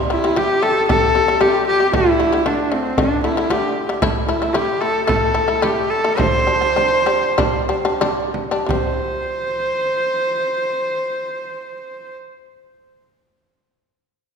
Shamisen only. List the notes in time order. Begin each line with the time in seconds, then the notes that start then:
0.10 C3 G3
0.24 C3 G3
0.36 C3 G3
0.62 C3 G3
0.89 C3 G3
1.15 C3 G3
1.28 C3 G3
1.41 C3 G3
1.80 C3 G3
1.93 D3 A3
2.19 D3 A3
2.33 D3 A3
2.46 D3 A3
2.72 D3 A3
2.98 D3 A3
3.24 D3 A3
3.37 D3 A3
3.50 D3 A3
3.89 D3 A3
4.02 A3 E4
4.29 A3 E4
4.42 A3 E4
4.54 A3 E4
4.81 A3 E4
5.07 A3 E4
5.34 A3 E4
5.48 A3 E4
5.62 A3 E4
6.04 A3 E4
6.18 G3 D4
6.47 G3 D4
6.61 G3 D4
6.76 G3 D4
7.06 G3 D4
7.38 G3 D4
7.69 G3 D4
7.85 G3 D4
8.01 G3 D4
8.51 G3 D4
8.66 C3
8.70 G3